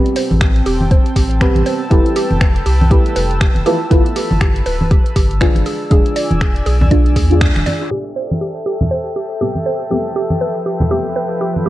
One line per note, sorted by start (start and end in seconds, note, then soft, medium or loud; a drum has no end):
0.00 1.38 C4 medium
0.00 1.89 C4 medium
0.00 1.39 G4 medium
0.00 1.39 B4 medium
0.00 1.89 G5 medium
0.00 5.62 A5 medium
0.00 5.62 E6 medium
0.06 closed hi-hat soft
0.16 0.22 C5 medium
0.16 open hi-hat loud
0.31 0.61 A1 medium
0.31 high conga medium
0.41 0.45 G4 medium
0.41 finger snap loud
0.41 kick loud
0.41 closed hi-hat medium
0.56 closed hi-hat soft
0.66 0.99 E1 medium
0.66 0.72 G4 loud
0.66 open hi-hat medium
0.81 high conga medium
0.91 0.97 C5 medium
0.91 kick loud
0.91 closed hi-hat medium
1.06 closed hi-hat soft
1.16 1.49 A1 medium
1.16 1.20 G4 medium
1.16 kick medium
1.16 open hi-hat loud
1.31 closed hi-hat soft
1.41 1.88 C4 medium
1.41 1.89 G4 medium
1.41 1.47 G4 loud
1.41 1.89 B4 loud
1.41 finger snap loud
1.41 kick loud
1.41 closed hi-hat medium
1.55 1.63 A1 medium
1.55 closed hi-hat soft
1.55 high conga medium
1.66 1.72 C5 medium
1.66 open hi-hat medium
1.90 2.02 F1 loud
1.90 2.88 E4 medium
1.90 2.88 G4 medium
1.90 1.95 G4 medium
1.90 2.89 A4 medium
1.90 3.64 B4 medium
1.90 2.89 B4 medium
1.90 3.64 G5 medium
1.90 kick loud
1.90 closed hi-hat medium
2.06 closed hi-hat medium
2.16 2.22 G4 loud
2.16 open hi-hat loud
2.31 2.61 F1 medium
2.31 high conga medium
2.41 2.47 B4 medium
2.41 finger snap loud
2.41 kick loud
2.41 closed hi-hat medium
2.56 closed hi-hat soft
2.66 2.99 C2 medium
2.66 2.70 G4 medium
2.66 open hi-hat medium
2.82 high conga medium
2.90 3.63 E4 medium
2.90 3.64 G4 medium
2.90 2.97 G4 loud
2.90 3.64 A4 medium
2.90 3.64 B4 medium
2.90 kick loud
2.90 closed hi-hat medium
3.06 closed hi-hat soft
3.16 3.49 F1 medium
3.16 3.22 B4 medium
3.16 open hi-hat loud
3.31 closed hi-hat soft
3.41 3.45 G4 medium
3.41 finger snap loud
3.41 kick loud
3.41 closed hi-hat medium
3.55 3.63 F1 medium
3.55 closed hi-hat medium
3.55 high conga medium
3.66 3.78 E4 medium
3.66 3.78 F4 medium
3.66 3.72 G4 loud
3.66 3.78 A4 medium
3.66 5.64 B4 medium
3.66 3.78 B4 medium
3.66 open hi-hat medium
3.90 4.02 G1 loud
3.90 5.38 E4 medium
3.90 5.38 F4 medium
3.90 5.39 A4 medium
3.90 3.97 B4 medium
3.90 5.39 B4 medium
3.90 kick loud
3.90 closed hi-hat medium
4.06 closed hi-hat medium
4.16 4.20 G4 medium
4.16 open hi-hat loud
4.31 4.61 G1 medium
4.31 high conga medium
4.41 4.47 G4 loud
4.41 finger snap loud
4.41 kick loud
4.41 closed hi-hat medium
4.56 closed hi-hat medium
4.66 4.99 D1 medium
4.66 4.72 B4 medium
4.66 open hi-hat medium
4.81 high conga medium
4.91 4.95 G4 medium
4.91 kick loud
4.91 closed hi-hat medium
5.06 closed hi-hat medium
5.16 5.49 G1 medium
5.16 5.22 G4 loud
5.16 kick medium
5.16 open hi-hat loud
5.31 closed hi-hat soft
5.41 5.88 D4 medium
5.41 5.89 F4 medium
5.41 5.89 G#4 medium
5.41 5.47 B4 medium
5.41 finger snap loud
5.41 kick loud
5.41 closed hi-hat medium
5.55 5.63 G1 medium
5.55 closed hi-hat medium
5.55 high conga medium
5.66 5.70 G#4 medium
5.66 7.89 D5 medium
5.66 7.89 G#5 medium
5.66 7.89 E6 medium
5.66 open hi-hat medium
5.90 6.02 E1 loud
5.90 6.88 D4 medium
5.90 6.89 F4 medium
5.90 5.97 G#4 loud
5.90 6.89 G#4 loud
5.90 kick loud
5.90 closed hi-hat medium
6.06 closed hi-hat medium
6.16 6.22 D5 medium
6.16 open hi-hat loud
6.31 6.61 E1 medium
6.31 closed hi-hat soft
6.31 high conga medium
6.41 6.45 G#4 medium
6.41 finger snap loud
6.41 kick loud
6.41 closed hi-hat medium
6.56 closed hi-hat medium
6.66 7.18 B1 medium
6.66 6.72 G#4 loud
6.66 open hi-hat medium
6.81 high conga medium
6.81 low conga medium
6.91 7.28 D4 medium
6.91 7.28 F4 medium
6.91 7.28 G#4 medium
6.91 6.97 D5 medium
6.91 kick loud
6.91 closed hi-hat medium
7.06 closed hi-hat medium
7.16 7.49 E2 medium
7.16 7.20 G#4 medium
7.16 kick medium
7.16 open hi-hat loud
7.30 7.88 D4 medium
7.30 7.89 F4 medium
7.30 7.89 G#4 medium
7.30 closed hi-hat soft
7.41 7.47 G#4 loud
7.41 finger snap loud
7.41 kick loud
7.41 closed hi-hat medium
7.56 7.63 E1 loud
7.56 finger snap soft
7.56 closed hi-hat medium
7.56 high conga medium
7.66 7.72 D5 medium
7.66 open hi-hat medium
7.66 high conga medium
7.90 9.38 A2 medium
7.90 9.38 C4 medium
7.90 7.97 G4 loud
7.90 9.39 G4 medium
7.90 11.62 A4 medium
7.90 9.39 B4 medium
7.90 11.69 E5 medium
7.90 11.69 G5 medium
8.16 8.22 C5 medium
8.31 high conga medium
8.41 8.45 G4 medium
8.66 8.72 G4 medium
8.81 high conga medium
8.81 low conga medium
8.91 8.97 C5 medium
9.16 9.20 G4 medium
9.41 9.88 A2 medium
9.41 9.89 C4 medium
9.41 9.47 G4 loud
9.41 9.89 B4 medium
9.55 high conga medium
9.66 9.72 C5 medium
9.90 10.88 F3 medium
9.90 11.69 F3 medium
9.90 10.88 C4 medium
9.90 10.89 E4 medium
9.90 9.95 G4 medium
9.90 10.89 G4 medium
9.90 10.89 A4 medium
9.90 11.69 B4 medium
9.90 10.89 B4 medium
10.16 10.22 G4 loud
10.30 high conga medium
10.41 10.47 B4 medium
10.66 10.70 G4 medium
10.80 high conga medium
10.80 low conga medium
10.90 11.63 F3 medium
10.90 11.63 C4 medium
10.90 11.64 E4 medium
10.90 10.97 G4 loud
10.90 11.64 B4 medium
11.16 11.22 B4 medium
11.41 11.45 G4 medium
11.56 high conga medium
11.66 11.69 G3 medium
11.66 11.69 D4 medium
11.66 11.69 E4 medium
11.66 11.69 G4 loud
11.66 11.69 A4 medium